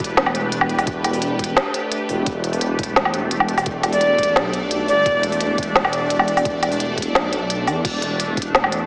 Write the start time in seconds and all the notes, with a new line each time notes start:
Already playing: E1 A3 D4 G4 B4
0.04 closed hi-hat
0.17 snare, low woodblock
0.26 low woodblock
0.35 E1, closed hi-hat
0.52 closed hi-hat
0.61 low woodblock
0.69 closed hi-hat
0.79 open hi-hat, low woodblock
0.87 E1, kick, closed hi-hat
1.04 closed hi-hat, low woodblock
1.13 open hi-hat
1.22 closed hi-hat
1.39 kick, closed hi-hat
1.44 closed hi-hat
1.57 snare, low woodblock
1.74 closed hi-hat
1.92 closed hi-hat
2.09 E1, open hi-hat
2.26 E1, kick, closed hi-hat
2.44 closed hi-hat
2.53 open hi-hat
2.61 closed hi-hat
2.72 D5
2.79 kick, closed hi-hat
2.83 closed hi-hat
2.96 snare, low woodblock
3.05 low woodblock
3.14 E1, closed hi-hat
3.31 closed hi-hat
3.40 low woodblock
3.49 closed hi-hat
3.58 open hi-hat, low woodblock
3.66 E1, kick, closed hi-hat
3.83 closed hi-hat, low woodblock
3.93 D5, open hi-hat
4.01 closed hi-hat
4.18 kick, closed hi-hat
4.23 closed hi-hat
4.36 B1, snare, low woodblock
4.53 closed hi-hat
4.71 closed hi-hat
4.88 G1 D5, open hi-hat
5.06 E1, kick, closed hi-hat
5.23 closed hi-hat
5.32 open hi-hat
5.41 closed hi-hat
5.58 kick, closed hi-hat
5.63 closed hi-hat
5.76 snare, low woodblock
5.85 low woodblock
5.93 E1, closed hi-hat
6.10 closed hi-hat
6.19 low woodblock
6.28 closed hi-hat
6.37 open hi-hat, low woodblock
6.45 E1, kick, closed hi-hat
6.63 closed hi-hat, low woodblock
6.72 open hi-hat
6.80 closed hi-hat
6.98 kick, closed hi-hat
7.02 closed hi-hat
7.15 B1, snare, low woodblock
7.33 closed hi-hat
7.50 B1, closed hi-hat
7.67 E2, open hi-hat, low woodblock
7.85 E1, kick, closed hi-hat, crash
8.02 closed hi-hat
8.20 closed hi-hat, open hi-hat
8.37 kick, closed hi-hat
8.42 closed hi-hat
8.55 snare, low woodblock
8.64 low woodblock
8.72 E1, closed hi-hat